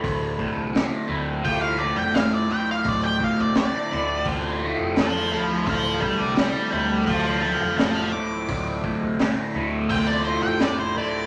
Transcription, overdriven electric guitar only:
X:1
M:4/4
L:1/8
Q:1/4=85
K:Dm
V:1 name="Overdriven electric guitar"
[D,,A,,A,F] A,, A,, A, F A, A,, A, | D,, A,, A,, A, F A, A,, A, | D,, A,, A,, A, F A, A,, A, | D,, A,, A,, A, F A, A,, A, |]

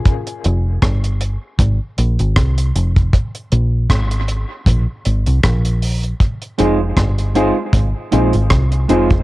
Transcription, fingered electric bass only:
X:1
M:4/4
L:1/16
Q:"Swing 16ths" 1/4=78
K:Fm
V:1 name="Fingered electric bass" clef=bass
z2 F,,,2 G,,,3 z A,,, z B,,, A,,, C,,2 F,,,2 | z2 B,,,2 A,,,3 z B,,, z A,,, C,, B,,,4 | z2 F,,,2 G,,,3 z A,,, z B,,, A,,, C,,2 F,,,2 |]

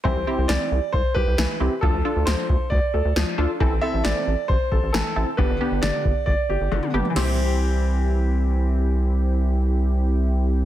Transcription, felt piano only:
X:1
M:4/4
L:1/8
Q:1/4=135
K:C
V:1 name="Felt piano" clef=bass
E, z E, z2 G E, z | F, z F, z2 A F, z | E, z E, z2 A E, z | D, z D, z2 G D, z |
[E,G,CG]8- | [E,G,CG]8 |]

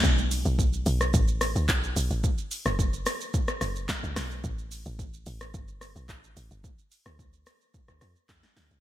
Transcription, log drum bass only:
X:1
M:4/4
L:1/16
Q:1/4=109
K:F#phr
V:1 name="Log drum bass" clef=bass
B,,,3 B,,,3 B,,,2 A,,,3 D,, B,,,2 B,,, A,,, | z3 F,,,3 z4 F,,,2 z C,, B,,,2 | A,,,3 A,,,3 A,,,2 G,,,3 B,,, A,,,2 A,,, G,,, | z3 D,,3 z3 D,, =F,, z E,, z D,, =C,, |]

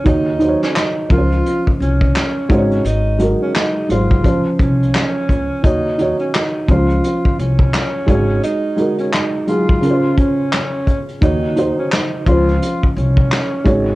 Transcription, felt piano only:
X:1
M:4/4
L:1/8
Q:"Swing 16ths" 1/4=86
K:Db
V:1 name="Felt piano"
[E,EGd] [E,EGcd]2 [F,DFBc]4 [A,EGcd]- | [A,EGcd] [A,EGB]2 [G,A,Ec] [F,DFc]4 | [E,EGd] [E,EGd]2 [F,DFc]4 [A,EGd]- | [A,EGd] [A,EGB]2 [G,A,EA] [D,DFBc]4 |
[E,EGd] [E,EGc]2 [F,DFc]4 [A,EGd] |]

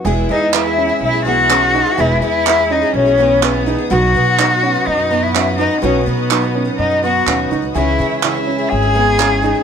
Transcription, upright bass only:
X:1
M:4/4
L:1/8
Q:1/4=125
K:E
V:1 name="Upright bass" clef=bass
E,,, E,,3 B,,,4 | E,,, E,,3 B,,,4 | B,,, B,,3 F,,4 | B,,, B,,3 F,,2 D,, C,, |
C,, C,3 G,,,4 |]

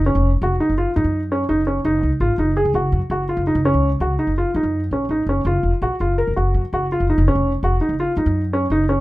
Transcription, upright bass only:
X:1
M:5/4
L:1/16
Q:1/4=167
K:F#
V:1 name="Upright bass" clef=bass
F,,, E,,,3 E,,,2 z F,,,2 z F,, F,,4- F,, F,,,4 | F,,,2 C,, z G,,, z F,,,3 C,, F,,,2 F,, z F,,,3 F,,,2 F,,,- | F,,, C,,3 C,,2 z F,,,2 z F,, F,,3 A,,,2 G,,,2 F,,,2 | F,,,2 E,,, z A,,, z F,,,3 E,,, F,,,2 F,, z F,,,3 F,,,2 F,,,- |
F,,, E,,,3 E,,,2 z F,,,2 z F,, F,,4- F,, F,,,4 |]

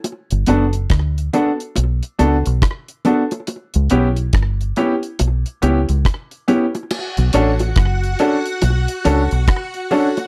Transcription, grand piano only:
X:1
M:4/4
L:1/8
Q:"Swing 16ths" 1/4=70
K:Bm
V:1 name="Grand piano"
z [B,DFA] z [B,DFA] z [B,DFA] z [B,DFA] | z [B,CEG] z [B,CEG] z [B,CEG] z [B,CEG] | z [CDFA] z [CDFA] z [CDFA] z [CDFA] |]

